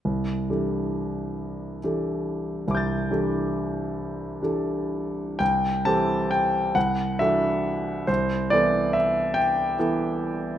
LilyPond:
\new Staff \with { instrumentName = "Grand piano" } { \time 6/8 \key c \major \tempo 4. = 45 << { r2. | <e'' d''' g''' a'''>2. | g''8 a''8 g''8 fis''8 e''4 | c''8 d''8 e''8 g''4. | } \\ { c,8 <e d' g' a'>4. <e d' g' a'>4 | c,8 <e d' g' a'>4. <e d' g' a'>4 | c,8 <e c' g' a'>4 c,8 <e d' fis' a'>4 | c,8 <e b e' a'>4. <e b e' a'>4 | } >> }